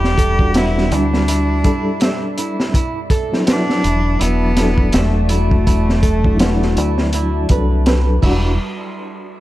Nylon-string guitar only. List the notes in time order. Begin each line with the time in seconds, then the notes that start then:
0.18 A4
0.54 B3
0.91 E4
1.28 E4
1.65 E4
2.02 E5
2.39 E4
2.75 E4
3.11 A4
3.47 B3
3.83 E4
4.19 E4
4.56 E4
4.93 E5
5.29 E4
5.67 E4
6.03 A4
6.40 B3
6.77 E4
7.14 E4
7.51 B4
7.87 B4
8.22 E4